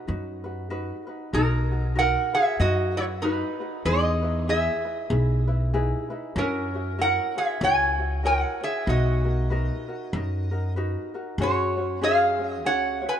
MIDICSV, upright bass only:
0, 0, Header, 1, 2, 480
1, 0, Start_track
1, 0, Key_signature, 5, "major"
1, 0, Tempo, 628272
1, 1020, Time_signature, 4, 2, 24, 8
1, 10084, End_track
2, 0, Start_track
2, 0, Title_t, "Upright bass"
2, 0, Program_c, 0, 32
2, 64, Note_on_c, 0, 42, 87
2, 686, Note_off_c, 0, 42, 0
2, 1019, Note_on_c, 0, 35, 90
2, 1643, Note_off_c, 0, 35, 0
2, 1983, Note_on_c, 0, 42, 97
2, 2605, Note_off_c, 0, 42, 0
2, 2944, Note_on_c, 0, 40, 99
2, 3566, Note_off_c, 0, 40, 0
2, 3897, Note_on_c, 0, 35, 97
2, 4521, Note_off_c, 0, 35, 0
2, 4857, Note_on_c, 0, 42, 100
2, 5481, Note_off_c, 0, 42, 0
2, 5814, Note_on_c, 0, 37, 98
2, 6439, Note_off_c, 0, 37, 0
2, 6778, Note_on_c, 0, 35, 93
2, 7402, Note_off_c, 0, 35, 0
2, 7739, Note_on_c, 0, 42, 95
2, 8363, Note_off_c, 0, 42, 0
2, 8695, Note_on_c, 0, 42, 93
2, 9660, Note_off_c, 0, 42, 0
2, 9660, Note_on_c, 0, 37, 98
2, 9972, Note_off_c, 0, 37, 0
2, 10084, End_track
0, 0, End_of_file